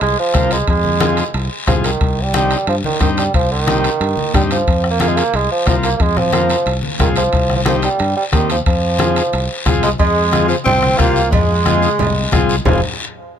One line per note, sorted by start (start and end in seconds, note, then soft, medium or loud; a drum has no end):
0.01 0.15 C2 medium
0.01 0.17 G#3 loud
0.01 high conga soft
0.01 high timbale medium
0.01 long guiro medium
0.19 0.54 F3 medium
0.34 0.61 C2 medium
0.34 0.58 C4 medium
0.34 0.58 F4 medium
0.34 0.58 A#4 medium
0.34 bombo low medium
0.34 bombo rim medium
0.34 high conga medium
0.34 high timbale medium
0.34 low timbale medium
0.34 short guiro medium
0.51 0.68 G#3 medium
0.51 high timbale medium
0.51 short guiro medium
0.68 1.21 F2 medium
0.68 1.31 G#3 medium
0.68 bombo low medium
0.68 high conga soft
0.68 high timbale medium
0.68 long guiro medium
0.84 high conga medium
1.00 1.24 C4 medium
1.00 1.24 F4 medium
1.00 1.24 G#4 medium
1.00 bombo rim medium
1.00 high conga medium
1.00 high timbale medium
1.00 short guiro medium
1.17 high timbale medium
1.17 short guiro medium
1.34 1.48 C2 medium
1.34 high conga soft
1.34 high timbale medium
1.34 long guiro medium
1.67 1.94 C2 medium
1.67 1.75 F3 medium
1.67 1.91 C4 medium
1.67 1.91 F4 medium
1.67 1.91 G#4 medium
1.67 bombo low medium
1.67 bombo rim medium
1.67 high conga medium
1.67 low conga medium
1.67 high timbale medium
1.67 low timbale medium
1.67 short guiro medium
1.84 2.25 D#3 medium
1.84 high timbale medium
1.84 short guiro medium
2.01 2.54 C2 medium
2.01 bombo low medium
2.01 high conga soft
2.01 high timbale medium
2.01 long guiro medium
2.23 2.34 G3 medium
2.34 2.65 G3 medium
2.34 2.57 C4 medium
2.34 2.58 D#4 medium
2.34 2.58 G4 medium
2.34 bombo rim medium
2.34 high conga medium
2.34 high timbale medium
2.34 short guiro medium
2.51 high timbale medium
2.51 short guiro medium
2.67 2.81 G2 medium
2.67 2.76 F3 medium
2.67 high conga soft
2.67 high timbale medium
2.67 long guiro medium
2.84 3.00 D#3 medium
2.84 high conga medium
3.00 3.27 G2 medium
3.00 3.09 D#3 medium
3.00 3.24 C4 medium
3.00 3.24 D#4 medium
3.00 3.24 G4 medium
3.00 bombo low medium
3.00 bombo rim medium
3.00 high conga medium
3.00 high timbale medium
3.00 short guiro medium
3.17 3.33 G3 medium
3.17 high timbale medium
3.17 short guiro medium
3.34 3.87 C2 medium
3.34 3.50 F3 loud
3.34 bombo low medium
3.34 high conga soft
3.34 high timbale medium
3.34 long guiro medium
3.51 4.30 D#3 medium
3.67 3.90 C4 medium
3.67 3.90 D#4 medium
3.67 3.91 G4 medium
3.67 bombo rim medium
3.67 high conga loud
3.67 high timbale medium
3.67 short guiro medium
3.84 high timbale medium
3.84 short guiro medium
4.01 4.14 G2 medium
4.01 high conga soft
4.01 high timbale medium
4.01 long guiro medium
4.17 high conga medium
4.34 4.61 G2 medium
4.34 4.42 G3 medium
4.34 4.57 C4 medium
4.34 4.57 D#4 medium
4.34 4.57 G4 medium
4.34 bombo low medium
4.34 bombo rim medium
4.34 high conga medium
4.34 low conga medium
4.34 high timbale medium
4.34 short guiro medium
4.51 4.87 F3 medium
4.51 high timbale medium
4.51 short guiro medium
4.67 5.20 F2 medium
4.67 bombo low medium
4.67 high conga soft
4.67 high timbale medium
4.67 long guiro medium
4.84 bombo rim medium
4.91 5.00 A#3 medium
5.00 5.09 A#3 loud
5.00 5.24 C4 medium
5.00 5.24 F4 medium
5.00 5.24 G#4 medium
5.00 bombo rim medium
5.00 high conga medium
5.00 high timbale medium
5.00 short guiro medium
5.08 5.17 G#3 medium
5.16 5.37 A#3 loud
5.16 high timbale medium
5.16 short guiro medium
5.33 5.47 C2 medium
5.33 5.51 G#3 loud
5.33 high conga soft
5.33 high timbale medium
5.33 long guiro medium
5.52 5.66 F3 medium
5.66 5.94 C2 medium
5.66 5.76 F3 medium
5.66 5.90 C4 medium
5.66 5.90 F4 medium
5.66 5.90 A#4 medium
5.66 bombo low medium
5.66 bombo rim medium
5.66 high conga medium
5.66 high timbale medium
5.66 low timbale medium
5.66 short guiro medium
5.83 5.96 A#3 medium
5.83 high timbale medium
5.83 short guiro medium
5.97 6.53 F2 medium
5.97 6.03 A#3 medium
5.97 bombo low medium
5.97 high conga soft
5.97 high timbale medium
5.97 long guiro medium
6.01 6.19 G#3 loud
6.17 6.73 F3 loud
6.17 bombo rim medium
6.17 low conga medium
6.33 6.56 C4 medium
6.33 6.57 F4 medium
6.33 6.57 A#4 medium
6.33 bombo rim medium
6.33 high conga medium
6.33 high timbale medium
6.33 short guiro medium
6.50 high timbale medium
6.50 short guiro medium
6.66 6.80 C2 medium
6.66 high conga soft
6.66 high timbale medium
6.66 long guiro medium
6.83 high conga medium
6.99 7.27 C2 medium
6.99 7.08 D#3 medium
6.99 7.23 C4 medium
6.99 7.23 F4 medium
6.99 7.24 G#4 medium
6.99 bombo low medium
6.99 bombo rim medium
6.99 high conga medium
6.99 low conga medium
6.99 high timbale medium
6.99 short guiro medium
7.16 7.53 F3 medium
7.16 high timbale medium
7.16 short guiro medium
7.33 7.87 C2 medium
7.33 bombo low medium
7.33 high conga soft
7.33 high timbale medium
7.33 long guiro medium
7.49 bombo rim medium
7.49 high conga medium
7.56 7.61 F3 medium
7.65 7.75 F3 medium
7.65 7.89 C4 medium
7.65 7.89 D#4 medium
7.65 7.89 G4 medium
7.65 bombo rim medium
7.65 high conga medium
7.65 high timbale medium
7.65 short guiro medium
7.82 8.15 G3 medium
7.82 high timbale medium
7.82 short guiro medium
7.99 8.13 G2 medium
7.99 high conga soft
7.99 high timbale medium
7.99 long guiro medium
8.17 8.24 G3 medium
8.32 8.60 D#2 medium
8.32 8.49 D#3 medium
8.32 8.56 C4 medium
8.32 8.56 D#4 medium
8.32 8.56 G4 medium
8.32 bombo low medium
8.32 bombo rim medium
8.32 high conga medium
8.32 high timbale medium
8.32 low timbale medium
8.32 short guiro medium
8.49 8.58 F3 medium
8.49 high timbale medium
8.49 short guiro medium
8.66 9.20 F2 medium
8.66 9.62 F3 medium
8.66 bombo low medium
8.66 high conga soft
8.66 high timbale medium
8.66 long guiro medium
8.99 9.22 C4 medium
8.99 9.23 F4 medium
8.99 9.23 G#4 medium
8.99 bombo rim medium
8.99 high conga medium
8.99 high timbale medium
8.99 short guiro medium
9.16 high timbale medium
9.16 short guiro medium
9.33 9.46 C2 medium
9.33 high conga soft
9.33 high timbale medium
9.33 long guiro medium
9.66 9.93 C2 medium
9.66 9.89 C4 medium
9.66 9.89 F4 medium
9.66 9.90 G#4 medium
9.66 bombo low medium
9.66 bombo rim medium
9.66 high conga medium
9.66 low conga medium
9.66 high timbale medium
9.66 short guiro medium
9.83 9.90 G#3 medium
9.83 9.91 G#3 medium
9.83 high timbale medium
9.83 short guiro medium
9.99 10.53 F2 medium
9.99 10.46 G#3 medium
9.99 10.46 G#3 loud
9.99 bombo low medium
9.99 cowbell loud
9.99 long guiro medium
10.32 10.56 C4 medium
10.32 10.56 F4 medium
10.32 10.56 G#4 medium
10.32 bombo rim medium
10.32 cowbell medium
10.32 high conga medium
10.32 short guiro medium
10.48 10.56 F3 medium
10.48 short guiro medium
10.65 10.93 C2 medium
10.65 10.99 C4 medium
10.65 11.00 C4 loud
10.65 cowbell medium
10.65 low conga medium
10.65 long guiro medium
10.82 bombo rim medium
10.82 high conga medium
10.97 11.33 C2 medium
10.97 11.31 A#3 loud
10.97 11.22 C4 medium
10.97 11.30 F4 medium
10.97 11.22 F4 medium
10.97 11.23 G4 medium
10.97 bombo low medium
10.97 bombo rim medium
10.97 cowbell medium
10.97 high conga medium
10.97 short guiro medium
11.16 short guiro medium
11.30 11.86 F2 loud
11.30 12.44 G#3 medium
11.30 12.45 G#3 loud
11.30 bombo low medium
11.30 cowbell loud
11.30 low conga medium
11.30 long guiro medium
11.66 11.89 C4 medium
11.66 11.89 F4 medium
11.66 11.90 G#4 medium
11.66 bombo rim medium
11.66 cowbell medium
11.66 high conga medium
11.66 short guiro medium
11.83 short guiro medium
11.99 12.26 C2 medium
11.99 cowbell medium
11.99 low conga medium
11.99 long guiro medium
12.32 12.59 C2 medium
12.32 12.56 C4 medium
12.32 12.56 F4 medium
12.32 12.56 G#4 loud
12.32 bombo low medium
12.32 bombo rim medium
12.32 cowbell medium
12.32 high conga medium
12.32 low conga medium
12.32 short guiro medium
12.49 short guiro medium
12.65 12.81 F1 medium
12.65 12.81 G#2 medium
12.65 12.82 F3 medium
12.65 12.81 C4 medium
12.65 12.81 F4 medium
12.65 12.81 G#4 medium
12.65 bombo low loud
12.65 low conga loud
12.65 low timbale loud
12.65 long guiro medium